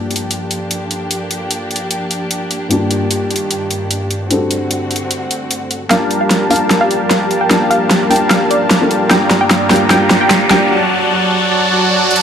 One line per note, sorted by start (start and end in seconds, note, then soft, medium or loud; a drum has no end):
0.00 2.67 G2 medium
0.00 2.67 F3 medium
0.00 2.68 A#3 medium
0.00 4.27 A#3 medium
0.00 2.68 D4 medium
0.00 4.27 D4 medium
0.00 2.69 F4 medium
0.00 4.27 G4 medium
0.00 2.69 A4 medium
0.11 closed hi-hat soft
0.16 closed hi-hat medium
0.31 closed hi-hat medium
0.51 closed hi-hat medium
0.71 closed hi-hat medium
0.91 closed hi-hat medium
1.11 closed hi-hat medium
1.31 closed hi-hat medium
1.51 closed hi-hat medium
1.71 closed hi-hat soft
1.76 closed hi-hat medium
1.91 closed hi-hat medium
2.11 closed hi-hat medium
2.31 closed hi-hat medium
2.51 closed hi-hat medium
2.69 4.27 G2 medium
2.69 5.88 G2 medium
2.69 4.29 D#3 medium
2.69 4.28 A#3 medium
2.69 4.28 D4 medium
2.69 4.29 F4 medium
2.69 closed hi-hat medium
2.73 4.29 G4 medium
2.91 closed hi-hat medium
3.11 closed hi-hat medium
3.31 closed hi-hat soft
3.36 closed hi-hat medium
3.51 closed hi-hat medium
3.71 closed hi-hat medium
3.91 closed hi-hat medium
4.11 closed hi-hat medium
4.29 5.89 D3 medium
4.29 5.87 G3 medium
4.29 5.89 A3 medium
4.29 5.88 C4 medium
4.29 5.89 C4 medium
4.29 5.88 D4 medium
4.29 5.89 F#4 medium
4.29 5.89 A4 medium
4.29 closed hi-hat medium
4.51 closed hi-hat medium
4.71 closed hi-hat medium
4.91 closed hi-hat soft
4.96 closed hi-hat medium
5.11 closed hi-hat medium
5.31 closed hi-hat medium
5.51 closed hi-hat medium
5.71 closed hi-hat medium
5.89 9.07 F3 medium
5.89 6.48 G3 medium
5.89 6.47 A#3 medium
5.89 10.67 A#3 medium
5.89 6.48 D4 medium
5.89 10.67 D4 medium
5.89 6.49 F4 medium
5.89 10.67 G4 medium
5.89 6.48 G4 medium
5.89 6.48 A#4 medium
5.89 6.48 F5 medium
5.89 6.08 F5 medium
5.89 6.48 A5 medium
5.89 snare soft
5.89 closed hi-hat medium
5.89 riser medium
5.93 6.49 A5 loud
6.11 closed hi-hat medium
6.21 6.38 F5 medium
6.31 snare soft
6.31 closed hi-hat medium
6.49 7.48 G3 medium
6.49 7.47 A#3 medium
6.49 7.48 D4 medium
6.49 7.49 F4 medium
6.49 7.48 G4 medium
6.49 7.48 A#4 medium
6.49 6.68 F5 medium
6.49 7.48 F5 medium
6.49 7.48 A5 loud
6.49 open hi-hat medium
6.53 7.49 A5 loud
6.53 closed hi-hat medium
6.71 snare soft
6.71 closed hi-hat medium
6.81 6.98 F5 medium
6.91 closed hi-hat medium
7.11 7.28 F5 medium
7.11 snare medium
7.11 closed hi-hat medium
7.31 closed hi-hat medium
7.41 7.58 G5 medium
7.49 8.08 G3 medium
7.49 8.07 A#3 medium
7.49 8.08 D4 medium
7.49 8.09 F4 medium
7.49 8.08 G4 medium
7.49 8.08 A#4 medium
7.49 8.08 F5 medium
7.49 8.08 A5 medium
7.49 snare medium
7.49 closed hi-hat medium
7.53 8.09 A5 loud
7.71 7.94 F5 medium
7.71 closed hi-hat medium
7.91 snare medium
7.91 closed hi-hat medium
8.09 9.08 G3 medium
8.09 8.78 A#3 loud
8.09 8.79 D4 medium
8.09 8.79 F4 medium
8.09 9.08 G4 medium
8.09 9.08 A#4 medium
8.09 9.08 F5 medium
8.09 8.22 G5 medium
8.09 9.08 A5 loud
8.09 open hi-hat medium
8.13 8.80 A5 loud
8.13 closed hi-hat medium
8.30 8.42 F5 medium
8.30 snare medium
8.30 closed hi-hat medium
8.51 8.68 D5 medium
8.51 closed hi-hat medium
8.71 snare medium
8.71 closed hi-hat medium
8.80 9.07 A#3 medium
8.80 9.08 D4 medium
8.80 9.09 F4 medium
8.80 9.09 A4 loud
8.91 closed hi-hat medium
9.09 10.69 G2 medium
9.09 10.69 D#3 medium
9.09 9.68 G3 medium
9.09 9.67 A#3 medium
9.09 9.68 D4 medium
9.09 9.69 F4 medium
9.09 9.68 G4 medium
9.09 9.68 D5 medium
9.09 9.68 F5 medium
9.09 9.28 G5 medium
9.09 9.68 A#5 medium
9.09 snare medium
9.09 closed hi-hat medium
9.13 9.69 G4 medium
9.31 snare medium
9.31 closed hi-hat medium
9.41 9.58 G5 medium
9.51 snare medium
9.51 closed hi-hat medium
9.69 9.89 G3 medium
9.69 9.87 A#3 medium
9.69 9.89 D4 medium
9.69 9.90 F4 medium
9.69 9.89 G4 medium
9.69 9.90 G4 loud
9.69 9.89 D5 medium
9.69 9.89 F5 medium
9.69 9.88 G5 medium
9.69 9.89 A#5 loud
9.69 snare medium
9.69 open hi-hat medium
9.76 closed hi-hat medium
9.89 10.48 G3 medium
9.89 10.47 A#3 medium
9.89 10.48 D4 medium
9.89 10.49 F4 medium
9.89 10.48 G4 medium
9.89 10.48 D5 medium
9.89 10.48 F5 medium
9.89 10.08 G5 medium
9.89 10.48 A#5 medium
9.89 snare medium
9.89 closed hi-hat medium
9.93 10.49 G4 medium
10.11 snare medium
10.11 closed hi-hat medium
10.21 10.38 G5 medium
10.31 snare medium
10.31 closed hi-hat medium
10.49 10.69 G3 medium
10.49 10.68 A#3 medium
10.49 10.69 D4 medium
10.49 10.70 F4 medium
10.49 10.69 G4 medium
10.49 10.70 G4 loud
10.49 10.69 D5 medium
10.49 10.69 F5 medium
10.49 10.68 G5 medium
10.49 10.69 A#5 loud
10.49 snare medium
10.49 closed hi-hat medium
10.71 11.09 F#3 medium
10.71 11.09 F#4 medium
10.71 11.09 D5 medium
10.71 11.09 F#5 medium
10.71 11.09 A5 medium
11.11 11.49 F#3 medium
11.11 11.49 F#4 medium
11.11 11.49 D5 medium
11.11 11.49 F#5 medium
11.11 11.49 A5 medium
11.51 11.69 F#3 medium
11.51 11.69 F#4 medium
11.51 11.69 D5 medium
11.51 11.69 F#5 medium
11.51 11.69 A5 loud
11.71 11.89 F#3 medium
11.71 11.89 F#4 medium
11.71 11.89 D5 medium
11.71 11.89 F#5 medium
11.71 11.89 A5 loud
11.91 12.09 F#3 medium
11.91 12.09 F#4 medium
11.91 12.09 D5 medium
11.91 12.09 F#5 medium
11.91 12.09 A5 medium
12.11 12.22 F#3 medium
12.11 12.22 F#4 medium
12.11 12.22 D5 medium
12.11 12.22 F#5 medium
12.11 12.22 A5 loud
12.11 closed hi-hat medium
12.16 closed hi-hat medium